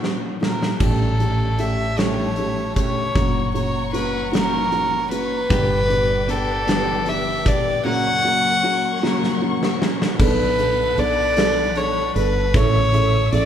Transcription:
Already playing: A#2 F#3 C#4 F#4
0.02 A#3 C#4 F#4, snare
0.41 A#3 C#4 F#4 A#4, snare
0.62 snare
0.80 A1 A3 C#4 G4 A4 C#5 E5 A5, kick, crash
1.20 A3 C#4 G4, closed hi-hat
1.59 A3 C#4 G4 E5, closed hi-hat
1.97 A3 C#4 G4 C#5, snare, closed hi-hat
2.36 A3 C#4 G4, closed hi-hat
2.76 A3 C#4 G4 C#5, kick, closed hi-hat
3.15 F#1 A#3 C#4 F#4 F#5 A#5 C#6, kick, closed hi-hat
3.54 A#3 C#4 F#4 C#5, closed hi-hat
3.93 A#3 C#4 F#4 B4, snare, closed hi-hat
4.32 A#3 C#4 F#4 A#4, snare, closed hi-hat
4.72 A#3 C#4 F#4, closed hi-hat
5.11 A#3 C#4 F#4 B4, closed hi-hat
5.49 G1 G2 D3 G3 B3 D4 G4 B4 D5 G5 D6, kick, closed hi-hat
5.89 B3 D4 G4, closed hi-hat
6.27 G3 B3 D4 G4 A4, closed hi-hat
6.66 G2 D3 G3 B3 D4 G4, snare, closed hi-hat
7.06 B3 D4 G4 E5, closed hi-hat
7.45 G3 B3 D4 G4 D5, kick, closed hi-hat
7.84 F#2 C#3 F#3 A#3 C#4 F#4 A#4 C#5 F#5 C#6
8.24 A#3 C#4 F#4
8.62 F#3 A#3 C#4 F#4
9.01 F#2 C#3 F#3 A#3 C#4 F#4, snare
9.24 snare
9.41 A#3 C#4 F#4
9.63 snare
9.80 F#3 A#3 C#4 F#4, snare
10.02 snare
10.19 B1 B3 D4 A4 B4 F#5 A5 B5, kick, crash
10.59 B3 D4 A4, closed hi-hat
10.97 B1 B3 D4 A4 D5, closed hi-hat
11.37 B3 D4 A4, snare, closed hi-hat
11.75 B3 D4 A4 C#5, closed hi-hat
12.15 G1 B3 D4 A4 B4, closed hi-hat
12.54 A1 C#4 E4 A4 C#5 E5 C#6 E6, kick, closed hi-hat
12.93 C#4 E4 A4, closed hi-hat
13.32 A1 C#4 E4 A4 D5, closed hi-hat

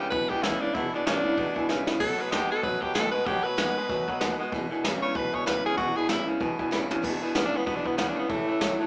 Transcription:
0.00 E2 C#3 E3 G#3 D4 E4
0.10 B1 E2 B2 E3 G#3 B4 E5 G#5, kick, open hi-hat
0.14 D4 E4
0.29 E2 B2 E3 G#3 D4 E4 G4 B4 E5 G#5, muted upright bass stroke, kick
0.43 D2 E2 B2 C#3 E3 G#3 D4 E4 B4 E5 F#5, snare, open hi-hat
0.61 E2 C#3 D4 E4 B4 E5 B5, muted upright bass stroke
0.65 E3 G#3
0.74 E1 E2 B2 E3 G#3 D4 E4 B4 E5 F#5, kick, open hi-hat
0.93 E2 B2 E3 G#3 D4 E4 B4 E5 G#5, muted upright bass stroke
1.05 G#1 E2 B2 C#3 E3 G#3 D4 E4 B4 G#5, snare
1.24 E2 C#3 E3 G#3 D4 E4 B4 E5 F#5, muted upright bass stroke
1.37 A1 E2 B2 D4 E4 B4 E5 F#5, kick, open hi-hat
1.55 E2 B2 D4 E4 B4 E5 G#5, muted upright bass stroke, kick
1.60 E3 G#3
1.68 G#1 E2 B2 C#3 E3 G#3 D4 E4 B4 E5 G#5 B5, snare
1.87 E2 C#3 E3 G#3 D4 E4 B4 E5 B5, muted upright bass stroke, snare
1.99 B1 B2 D#3 F#3 A3 B3 F#4 A4 B4 D#5 F#5, kick, open hi-hat, crash
2.17 B2 F#3 A3 B3 F#4 B4 D#5 F#5, muted upright bass stroke
2.21 B4
2.31 D#2 B2 D#3 G#3 A3 B3 F#4 G4 B4 D#5 A5, snare
2.50 B2 G#3 A3 B3 F#4 A4 B4 D#5 F#5, muted upright bass stroke
2.62 F#2 B2 D#3 F#3 A3 B3 F#4 B4 D#5 F#5, kick, open hi-hat
2.81 B2 F#3 A3 B3 F#4 G4 B4 D#5 F#5, muted upright bass stroke, kick
2.93 A2 B2 G#3 A3 B3 F#4 A4 B4 D#5 F#5, snare, open hi-hat
3.11 B2 G#3 B3 F#4 B4 D#5, muted upright bass stroke
3.15 A3 F#5
3.26 B1 B2 D#3 F#3 A3 B3 F#4 G4 B4 D#5 F#5, kick, open hi-hat
3.44 B2 F#3 A3 B3 F#4 B4 D#5 F#5, muted upright bass stroke
3.57 D#2 B2 D#3 G#3 A3 B3 F#4 B4 D#5 G#5, snare, open hi-hat
3.76 B2 G#3 A3 B3 F#4 B4 D#5 G#5, muted upright bass stroke
3.89 E2 B2 D#3 F#3 A3 B3 F#4 B4 D#5 G#5, kick, open hi-hat
4.08 B2 F#3 A3 B3 F#4 B4 D#5 F#5, muted upright bass stroke, kick
4.20 D#2 B2 D#3 G#3 A3 B3 F#4 B4 D#5 F#5, snare, open hi-hat
4.39 B2 G#3 B3 F#4 B4 D#5 F#5, muted upright bass stroke
4.44 A3
4.51 E1 E2 B2 E3 G#3 B4 E5 G#5, kick, open hi-hat
4.56 D4 E4
4.70 E2 B2 D4 E4 B4 E5 G#5, muted upright bass stroke
4.74 E3 G#3
4.82 G#1 E2 B2 C#3 E3 G#3 D4 B4 E5 G#5, snare, open hi-hat
4.87 E4
5.02 E2 C#3 G#3 D4 E4 B4 C#5 E5 B5, muted upright bass stroke
5.06 E3
5.14 B1 E2 B2 E3 G#3 D4 E4 B4 E5 G#5, kick, open hi-hat
5.32 E2 B2 E3 G#3 D4 E4 B4 C#5 E5 G#5, muted upright bass stroke, kick
5.45 D2 E2 B2 C#3 E3 G#3 D4 E4 B4 E5 F#5, snare, open hi-hat
5.64 E2 C#3 E3 G#3 D4 E4 G#4 B4 E5 G#5, muted upright bass stroke
5.77 E1 E2 B2 E3 D4 E4 F#4 B4 E5 G#5, kick, open hi-hat
5.96 E2 B2 E3 G#3 D4 E4 G#4 B4 E5 B5, muted upright bass stroke
6.08 G#1 E2 B2 C#3 E3 G#3 D4 E4 B4 E5 G#5, snare, open hi-hat
6.27 E2 C#3 E3 G#3 D4 E4 B4 E5 G#5, muted upright bass stroke
6.40 A1 E2 B2 E3 G#3 D4 E4 B4 E5 G#5, kick, open hi-hat
6.58 E2 B2 E3 G#3 D4 E4 B4 E5 G#5, muted upright bass stroke, kick
6.71 G#1 E2 B2 C#3 E3 G#3 D4 E4 B4 E5 B5, snare
6.90 E2 C#3 E3 G#3 D4 E4 B4 E5 G#5, muted upright bass stroke, floor tom
7.02 E1 E2 B2 E3 G#3 D4 E4 B4 E5 G#5, kick, crash
7.21 E2 B2 D4 E4 B4 E5 G#5, muted upright bass stroke
7.25 E3 G#3
7.35 G#1 E2 B2 C#3 E3 G#3 B3 D4 E4 B4 E5 G#5, snare
7.45 D4
7.53 E2 C#3 E3 G#3 B3 D4 E4 B4 E5 G#5, muted upright bass stroke
7.66 B1 E2 B2 G#3 B3 D4 E4 B4 E5 B5, kick, open hi-hat
7.76 D4
7.84 E2 B2 E3 G#3 B3 D4 E4 B4 E5 B5, muted upright bass stroke, kick
7.97 D2 E2 B2 C#3 E3 G#3 B3 D4 E4 B4 E5 F#5, snare, open hi-hat
8.08 D4
8.15 E2 C#3 G#3 B3 D4 E4 B4 E5 G#5, muted upright bass stroke
8.19 E3
8.29 A1 A2 E3 G3 A3 C#4 E4 C#5 E5 A5, kick, open hi-hat
8.47 A2 E3 C#4 E4 C#5 E5 A5, muted upright bass stroke
8.52 G3
8.60 C#2 A2 E3 F#3 G3 C#4 E4 C#5 E5 A5, snare, open hi-hat
8.79 A2 F#3 G3 C#4 E4 C#5 E5 A5, muted upright bass stroke

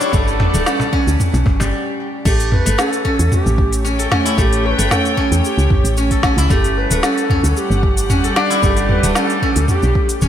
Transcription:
Already playing: G3 A3 D4 G4 A4 B4 C#5 F#5
0.00 E4, cajon slap, cabasa
0.13 G1 A3, kick, cabasa
0.28 cabasa
0.40 cajon slap, mid tom
0.54 D1 A3, cabasa
0.66 C#4, snare, cabasa
0.80 cajon bass, cabasa
0.93 C#4, kick
1.07 D2, cajon slap, cabasa
1.20 mid tom, cabasa
1.34 B1, cajon slap, cabasa
1.46 G1, kick, cajon bass
1.60 G1 G3, cajon bass, cajon slap, cabasa
2.25 A1 A3 G4, kick, crash, cabasa
2.40 open hi-hat, cabasa
2.52 B4, mid tom
2.66 G1 A3, open hi-hat, cabasa
2.78 C#4 A4, snare, cabasa
2.93 open hi-hat, cabasa
3.05 C#4, kick
3.19 E2 C#5, open hi-hat, cabasa
3.32 G4, mid tom, cabasa
3.46 A1, cabasa
3.58 kick
3.73 open hi-hat, cabasa
3.84 C#4 G5, cabasa
3.99 A4, open hi-hat, cabasa
4.11 C#4, snare, mid tom
4.25 E4, open hi-hat, cabasa
4.38 A1 A3 G4, kick, cabasa
4.53 open hi-hat, cabasa
4.66 C#5
4.70 B4
4.78 G1 A3, open hi-hat, cabasa
4.91 C#4 A4, snare, mid tom, cabasa
5.05 open hi-hat, cabasa
5.17 C#4, kick
5.31 E2, open hi-hat, cabasa
5.45 G4, cabasa
5.58 C#2, cabasa
5.70 A1, kick, mid tom
5.84 A1, open hi-hat, cabasa
5.97 C#4, cabasa
6.11 A4, kick, open hi-hat, cabasa
6.23 C#4, kick, snare
6.37 C#2 E4, open hi-hat, cabasa
6.50 G1 G3 A3 G4, kick, mid tom, cabasa
6.64 open hi-hat, cabasa
6.72 F#5
6.77 B4
6.86 G4
6.91 D1 A3, open hi-hat, cabasa
7.03 C#4 A4, snare, cabasa
7.17 open hi-hat, cabasa
7.30 C#4, kick, mid tom
7.43 D2, open hi-hat, cabasa
7.50 A4
7.57 G4, cabasa
7.70 G1, cabasa
7.83 kick
7.97 open hi-hat, cabasa
8.10 C#4, mid tom, cabasa
8.24 A4, open hi-hat, cabasa
8.36 D4, snare
8.50 E4, open hi-hat, cabasa
8.63 G1 A3 G4, kick, cabasa
8.77 open hi-hat, cabasa
8.89 B4, mid tom
9.03 D1 A3, open hi-hat, cabasa
9.15 C#4 A4, snare, cabasa
9.30 open hi-hat, cabasa
9.42 C#4, kick
9.56 D2, open hi-hat, cabasa
9.68 G4, mid tom, cabasa
9.83 B1, cabasa
9.95 kick
10.09 open hi-hat, cabasa
10.22 D1 C#4, cabasa

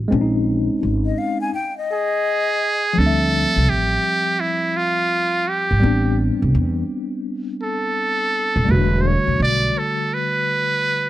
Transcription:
0.08 G#3 C4
0.12 A#1 C#4 D4
0.21 D#4
0.83 G#1
1.06 D#5
1.18 F5
1.41 G#5
1.54 G5
1.78 D#5
1.93 G#4
2.93 F3 G3
2.98 D2 C4 D4 A4
3.07 E5
3.56 C2
3.69 A1 G4
4.40 E4
4.77 F4
5.49 G4
5.71 G#1
5.80 A1 G3 B3 C4
5.86 D4
6.42 C2
6.55 E2
7.63 A4
8.56 D#1
8.65 E1 G3 A3
8.69 D3 F#4 B4
9.01 C5
9.07 C#5
9.27 E1
9.40 B1 D5
9.79 A4
10.14 B4

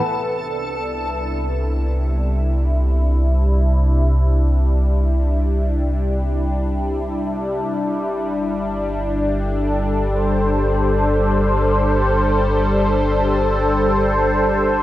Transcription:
Already playing: B3 B4
0.06 C2 C3
0.39 D4
0.76 G3 E4
7.68 G1
9.40 A4
10.04 C5

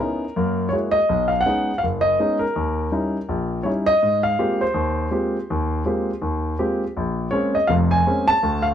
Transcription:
Already playing: A#4
0.00 B3 C#4 D#4 E4
0.36 F#2 A#3
0.69 G#3 A#3 F#4 C#5
0.73 E4
0.91 D#5
1.09 B1
1.28 F5
1.41 F#5
1.46 G#3 B3 C#4 D#4
1.78 F5
1.83 F#1
2.01 D#5
2.20 G#3 B3 C#4 D#4
2.39 A#4
2.56 D#2
2.92 G3 C#4 D#4 E4
3.29 A#1
3.63 G3 C#4 D#4 E4 C#5
3.86 D#5
4.03 G#2
4.23 F5
4.39 G#3 A#3 C4 F4 G4
4.61 C5
4.74 D#2
5.11 G#3 A#3 C4 F4 G4
5.50 D#2
5.85 G#3 A#3 C4 F4 G4
6.22 D#2
6.59 G#3 A#3 C4 F4 G4
6.97 A#1
7.31 G#3 A#3 C4 C#4 C#5
7.55 D#5
7.67 F1 F2 F5
7.91 G#5
8.07 G#3 A#3 C4 C#4
8.28 A5
8.43 D2
8.62 F5

